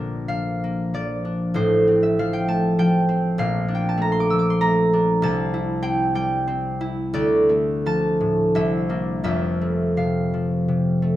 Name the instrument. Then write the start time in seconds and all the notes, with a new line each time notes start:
harp
Already playing: A#1 A#2 F3 D4 A#4 D5 F5
0.28 F3 F5
0.64 A#3
0.94 F3 D5
1.25 D4
1.54 A1 A2 C5
1.88 C4
2.03 E5
2.19 F3 F5
2.33 G5
2.48 A3 A5
2.79 F3 G5
3.09 C4
3.38 A#1 A#2 F5
3.68 D4
3.75 G5
3.89 A5
3.98 A3
4.02 A#5
4.12 C6
4.20 D6
4.30 F3 E6
4.39 D6
4.50 C6
4.61 A3 A#5
4.93 D4
5.22 C2 C3 A5
5.54 E4
5.83 C4 G5
6.15 G3 G5
6.47 C4
6.81 E4
7.14 D2 D5
7.49 A3
7.86 F3 A5
8.21 A2
8.55 C2 E5
8.89 A#3 D4
9.24 F1 F2 E5
9.61 A3
9.97 C3 F5
10.34 F3
10.68 C3
11.02 A3